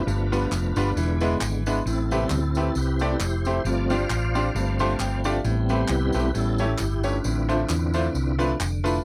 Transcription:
Already playing: tonewheel organ D4 F4 B4
0.06 fingered electric bass G1, grand piano G2, tonewheel organ F3 A3 B3, tambourine
0.32 grand piano G3 B3 D4 F4 B4, tambourine
0.51 fingered electric bass F1, clap, tambourine
0.76 fingered electric bass G1, grand piano G3 B3 D4 F4 B4, tambourine
0.96 fingered electric bass E1, tonewheel organ D3 G#3 B3, grand piano E3, tambourine
1.20 grand piano G#3 B3 D4 E4 B4, tambourine
1.41 fingered electric bass G#1, clap, tambourine
1.66 grand piano G#3 B3 D4 E4 B4, tambourine
1.86 fingered electric bass A1, grand piano A2, tonewheel organ C4 E4 A4, tambourine
2.11 tonewheel organ C3 G3 B3, grand piano A3 C4 E4 G4 B4, tambourine
2.30 fingered electric bass D2, tonewheel organ C4 E4 A4, clap, tambourine
2.55 grand piano A3 C4 E4 G4 B4, tambourine
2.75 fingered electric bass C2, tonewheel organ E4 G4 B4, tambourine
2.99 grand piano A3 C4 E4 G4 D5, tambourine
3.20 fingered electric bass F1, tonewheel organ E4 G4 C5, clap, tambourine
3.45 grand piano A3 C4 E4 G4 C5, tambourine
3.65 fingered electric bass G1, grand piano G2, tonewheel organ F3 A3 C4 F4 D5, tambourine
3.90 grand piano C4 D4 F4 G4 D5, tonewheel organ C5 D5 F5, tambourine
4.10 fingered electric bass A1, clap, tambourine
4.35 grand piano C4 D4 F4 G4 D5, tambourine
4.55 fingered electric bass G1, grand piano G2, tonewheel organ F3 A3 C4, tambourine
4.79 grand piano A3 D4 F4 G4 C5 A5, tambourine
5.00 fingered electric bass G1, grand piano G5, clap, tambourine
5.24 grand piano A3 D4 F4 G4 D5 F5, tambourine
5.44 fingered electric bass A1, grand piano A2, tonewheel organ G3 B3 C4, tambourine
5.69 grand piano A3 C4 E4 G4 B4, tonewheel organ C5, tambourine
5.88 fingered electric bass C2, tonewheel organ E4 G4 B4, clap, tambourine
6.13 fingered electric bass B1, grand piano A3 C4 E4 G4 B4, tambourine
6.34 fingered electric bass A1, grand piano A2, tonewheel organ G3 B3 C#4 E4 A4, tambourine
6.58 grand piano A3 C#4 E4 G4 C#5, tambourine
6.78 fingered electric bass G1, tonewheel organ G4, clap, tambourine
7.03 grand piano A3 C#4 E4 G4 C#5, tonewheel organ D4 F4 B4, tambourine
7.24 fingered electric bass A1, grand piano A2, tonewheel organ D3 C4 E4, tambourine
7.49 grand piano A3 D4 E4 F4 C5, tambourine
7.69 fingered electric bass E2, clap, tambourine
7.94 grand piano A3 D4 E4 F4 C5, tambourine
8.14 fingered electric bass C2, tambourine
8.39 tonewheel organ F3 C4 E4, grand piano A3 D4 E4 F4 B4, tambourine
8.60 fingered electric bass F1, clap, tambourine
8.84 grand piano A3 D4 E4 F4 B4, tambourine

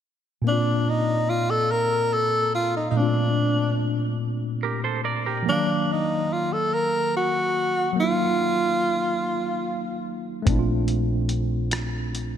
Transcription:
0.42 tine electric piano A#2 A#3
0.47 tine electric piano C4 D5, tenor saxophone D4
0.52 tine electric piano F4
0.90 tenor saxophone D#4
1.30 tenor saxophone F4
1.50 tenor saxophone A4
1.71 tenor saxophone A#4
2.14 tenor saxophone A4
2.55 tenor saxophone F4
2.77 tenor saxophone D#4
2.91 tine electric piano A#2 A3, tenor saxophone D#4
2.97 tine electric piano C4 D4, tenor saxophone D4
3.02 tine electric piano F4
4.63 clean electric guitar G4 A#4
4.84 clean electric guitar A4 C5
5.04 clean electric guitar A#4 D5
5.26 clean electric guitar G4 A#4
5.43 tine electric piano F3 A#3
5.49 tine electric piano D#3 F#3 F5, tenor saxophone D4
5.92 tenor saxophone D#4
6.33 tenor saxophone F4
6.53 tenor saxophone A4
6.74 tenor saxophone A#4
7.16 tenor saxophone F#4
7.93 tine electric piano F#3 A#3
7.99 tine electric piano D#4 F4, tenor saxophone F4
10.42 tine electric piano A3 C4
10.47 fingered electric bass A#1, tine electric piano D4, kick, closed hi-hat
10.52 tine electric piano E4
10.59 tine electric piano F4
10.88 closed hi-hat
11.29 closed hi-hat
11.71 cross-stick, closed hi-hat
12.15 closed hi-hat

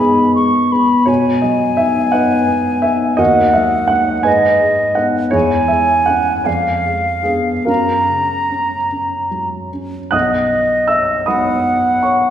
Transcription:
Already playing: grand piano B2 D#3 A#4 B4
0.00 grand piano G#3 B3 D#4 G#4, flute B5
0.35 grand piano G#3, flute C#6
0.72 grand piano G#3 B3, flute B5
1.05 grand piano B2 F#4 C#5, flute G#5
1.42 grand piano F#3 D#5
1.77 grand piano B3 D#4 E5
2.12 grand piano B3 D#4 B4 D#5 F#5
2.48 grand piano B3
2.82 grand piano B3 D#4 E5
3.17 grand piano D#2 F#4 A#4 D#5, flute F#5
3.53 grand piano F#3 E5
3.88 grand piano A#3 D#4 F#5
4.23 grand piano G#2 B4 D#5 G#5, flute D#5
4.61 grand piano G#3
4.95 grand piano B3 D#4 F#5
5.31 grand piano E2 E4 G#4 C#5, flute G#5
5.68 grand piano G#3 E5
6.06 grand piano C#4 F#5
6.44 grand piano F2 D5 F5 G#5, flute F5
6.85 grand piano G#3
7.23 grand piano B3 D4 G#4
7.65 grand piano F#2 C#4 F#4 A#4, flute A#5
8.09 grand piano C#3
8.50 grand piano C#4
8.91 grand piano C#4
9.31 grand piano F#3
9.73 grand piano C#4
10.11 grand piano B1 F#5 D#6 F#6, flute D#5
10.88 grand piano E5 E6
11.26 grand piano F#3 B3 D#4 D#5 B5 D#6, flute F#5
12.03 grand piano C#5 C#6

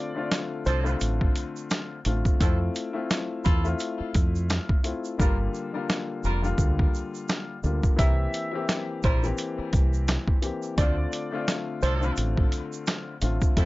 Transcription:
Already playing: grand piano D3 A3 C4 F4, upright piano D5
0.15 grand piano D3 A3 C4 F4
0.32 snare, closed hi-hat, shaker
0.66 fingered electric bass C2, horn section F3 D4 A4, upright piano C5, closed hi-hat, shaker
0.83 grand piano D3 A3 C4 F4, shaker
1.00 fingered electric bass A1, closed hi-hat, shaker
1.21 kick
1.36 closed hi-hat, shaker
1.56 shaker
1.70 snare, closed hi-hat, shaker
2.05 fingered electric bass A1, grand piano D3 A3 C4 F4, closed hi-hat, shaker
2.25 kick, shaker
2.40 fingered electric bass F2, horn section F3 E4 A4, grand piano A3 C4 E4 F4, kick, closed hi-hat, shaker
2.75 closed hi-hat, shaker
2.93 grand piano A3 C4 E4 F4
3.11 snare, closed hi-hat, shaker
3.44 fingered electric bass E2, horn section E4 F4 A4, kick, closed hi-hat, shaker
3.64 grand piano A3 C4 E4 F4, shaker
3.79 closed hi-hat, shaker
4.00 muted fingered electric bass stroke
4.14 fingered electric bass F2, kick, closed hi-hat, shaker
4.36 shaker
4.50 snare, closed hi-hat, shaker
4.69 kick
4.83 grand piano A3 C4 E4 F4, closed hi-hat, shaker
5.05 shaker
5.18 fingered electric bass G1, grand piano D3 G3 A#3 F4, horn section G3 F4 A#4, kick, shaker
5.55 shaker
5.73 grand piano D3 G3 A#3 F4
5.90 snare, shaker
6.24 fingered electric bass F1, horn section G3 F4 A#4, shaker
6.42 grand piano D3 G3 A#3 F4, shaker
6.58 fingered electric bass D2, kick, shaker
6.79 kick
6.95 shaker
7.15 shaker
7.29 snare, shaker
7.63 fingered electric bass D2, grand piano D3 G3 A#3 F4, shaker
7.83 kick, shaker
7.96 fingered electric bass C2, grand piano E3 A#3 C4 G4, horn section G3 E4 A#4, upright piano E5, kick, closed hi-hat, shaker
8.34 closed hi-hat, shaker
8.53 grand piano E3 A#3 C4 G4
8.69 snare, closed hi-hat, shaker
9.03 fingered electric bass A#1, horn section G3 E4 A#4, upright piano C5, kick, closed hi-hat, shaker
9.23 grand piano E3 A#3 C4 G4, shaker
9.38 closed hi-hat, shaker
9.59 muted fingered electric bass stroke
9.73 fingered electric bass C2, kick, closed hi-hat, shaker
9.94 shaker
10.08 snare, closed hi-hat, shaker
10.28 kick
10.42 grand piano E3 A#3 C4 G4, closed hi-hat, shaker
10.63 shaker
10.78 fingered electric bass D2, grand piano D3 A3 C4 F4, horn section F3 D4 A4, upright piano D5, kick, closed hi-hat, shaker
11.12 closed hi-hat, shaker
11.32 grand piano D3 A3 C4 F4
11.48 snare, closed hi-hat, shaker
11.82 fingered electric bass C2, horn section F3 D4 A4, upright piano C5, closed hi-hat, shaker
12.00 grand piano D3 A3 C4 F4, shaker
12.17 fingered electric bass A1, closed hi-hat, shaker
12.37 kick
12.52 closed hi-hat, shaker
12.73 shaker
12.87 snare, closed hi-hat, shaker
13.21 fingered electric bass A1, grand piano D3 A3 C4 F4, closed hi-hat, shaker
13.42 kick, shaker
13.57 fingered electric bass F2, horn section F3 E4 A4, grand piano A3 C4 E4 F4, kick, closed hi-hat, shaker

